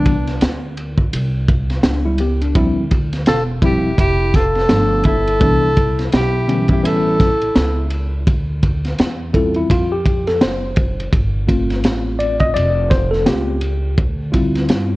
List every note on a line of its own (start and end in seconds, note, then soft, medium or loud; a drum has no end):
0.00 0.38 C2 loud
0.00 0.14 E3 medium
0.00 0.14 G3 medium
0.00 0.14 B3 medium
0.00 0.77 B3 medium
0.00 0.15 D4 medium
0.00 0.78 D4 medium
0.06 kick medium
0.06 ride medium
0.27 snare soft
0.27 ride soft
0.41 1.09 D2 medium
0.41 snare loud
0.41 hi-hat pedal soft
0.41 ride medium
0.77 ride medium
0.98 kick medium
1.13 1.81 C2 medium
1.13 ride medium
1.48 kick loud
1.48 ride medium
1.70 snare soft
1.70 ride soft
1.83 2.52 C#2 loud
1.83 2.04 D4 medium
1.83 snare loud
1.83 hi-hat pedal soft
1.83 ride medium
2.05 2.19 G3 medium
2.05 2.19 E4 medium
2.18 2.41 B3 medium
2.18 2.40 G4 medium
2.18 ride medium
2.41 2.75 D4 medium
2.41 ride soft
2.55 3.29 D2 loud
2.55 2.82 F3 medium
2.55 2.82 G3 medium
2.55 2.83 C4 medium
2.55 2.83 E4 medium
2.55 kick loud
2.55 ride medium
2.91 kick medium
2.91 ride medium
3.13 snare soft
3.13 ride soft
3.26 3.95 E1 medium
3.26 3.37 F4 medium
3.26 3.44 A4 loud
3.26 snare loud
3.26 hi-hat pedal soft
3.26 ride medium
3.62 3.89 F3 medium
3.62 3.89 G3 medium
3.62 3.90 C4 medium
3.62 3.96 E4 medium
3.62 3.90 E4 medium
3.62 3.97 G4 loud
3.62 kick medium
3.62 ride medium
3.98 4.66 F1 medium
3.98 4.34 E4 medium
3.98 4.38 G4 loud
3.98 kick medium
3.98 ride medium
4.34 5.05 F4 medium
4.34 5.06 A4 loud
4.34 kick medium
4.34 snare soft
4.34 ride medium
4.55 snare soft
4.55 ride soft
4.69 5.38 G1 loud
4.69 5.14 F3 medium
4.69 5.14 A3 medium
4.69 5.14 B3 medium
4.69 5.14 D4 medium
4.69 snare loud
4.69 hi-hat pedal soft
4.69 ride medium
5.04 6.09 E4 medium
5.04 6.10 A4 loud
5.04 kick medium
5.04 ride medium
5.28 ride soft
5.40 6.09 C2 loud
5.40 5.67 E3 medium
5.40 5.68 G3 medium
5.40 5.68 B3 medium
5.40 5.68 D4 medium
5.40 kick loud
5.40 ride medium
5.77 kick medium
5.77 ride medium
5.99 snare soft
5.99 ride soft
6.12 6.84 B1 medium
6.12 6.66 E4 medium
6.12 6.67 G4 medium
6.12 snare loud
6.12 hi-hat pedal soft
6.12 ride medium
6.47 6.56 D3 medium
6.47 6.82 G3 medium
6.47 6.83 B3 medium
6.47 6.83 C#4 medium
6.47 ride medium
6.54 6.82 E3 medium
6.68 6.83 E4 medium
6.68 6.88 G4 medium
6.68 kick medium
6.68 ride soft
6.83 7.52 A1 loud
6.83 7.28 E3 medium
6.83 7.28 G3 medium
6.83 7.28 B3 medium
6.83 7.28 C#4 medium
6.83 7.91 E4 medium
6.83 7.92 A4 loud
6.83 ride medium
7.20 kick medium
7.20 snare soft
7.20 ride medium
7.42 ride soft
7.56 8.23 C#2 medium
7.56 snare loud
7.56 hi-hat pedal soft
7.56 ride medium
7.90 ride medium
8.27 8.95 D2 medium
8.27 kick loud
8.27 ride medium
8.63 kick medium
8.63 ride medium
8.84 snare soft
8.84 ride soft
8.98 9.66 E2 medium
8.98 snare loud
8.98 hi-hat pedal soft
8.98 ride medium
9.33 9.84 G3 soft
9.33 9.84 C4 soft
9.33 9.55 E4 medium
9.33 9.70 F4 soft
9.33 9.56 A4 medium
9.33 kick medium
9.33 ride soft
9.54 9.70 E4 medium
9.54 ride soft
9.70 10.38 F2 medium
9.70 9.92 F4 medium
9.70 kick medium
9.70 ride medium
9.92 10.28 G4 medium
10.05 kick medium
10.05 ride medium
10.27 10.42 A4 medium
10.27 snare soft
10.27 ride soft
10.41 11.09 F#1 medium
10.41 11.09 C5 medium
10.41 snare loud
10.41 hi-hat pedal soft
10.41 ride medium
10.76 kick loud
10.76 ride medium
11.00 ride soft
11.12 11.84 G1 medium
11.12 kick loud
11.12 ride medium
11.47 13.24 A3 medium
11.47 13.24 C4 medium
11.47 13.25 F4 medium
11.47 kick medium
11.47 ride medium
11.70 snare soft
11.70 ride soft
11.84 12.52 A1 medium
11.84 snare loud
11.84 hi-hat pedal soft
11.84 ride medium
12.19 12.41 D5 medium
12.19 ride medium
12.39 12.55 D#5 loud
12.39 kick medium
12.39 ride soft
12.54 13.23 F1 medium
12.54 12.91 D5 loud
12.54 ride medium
12.90 13.10 C5 loud
12.90 kick medium
12.90 snare soft
12.90 ride medium
13.11 13.27 A4 medium
13.11 snare soft
13.25 13.95 C#2 medium
13.25 13.58 A3 soft
13.25 13.58 C4 soft
13.25 13.58 F4 medium
13.25 13.94 G4 medium
13.25 snare loud
13.25 hi-hat pedal soft
13.25 ride medium
13.61 ride medium
13.98 14.66 D2 loud
13.98 kick loud
13.98 ride medium
14.32 14.96 G3 medium
14.32 14.96 C4 medium
14.32 14.96 E4 medium
14.32 14.96 F4 medium
14.32 kick medium
14.32 ride medium
14.55 snare soft
14.55 ride soft
14.69 14.96 G2 medium
14.69 snare loud
14.69 hi-hat pedal soft
14.69 ride medium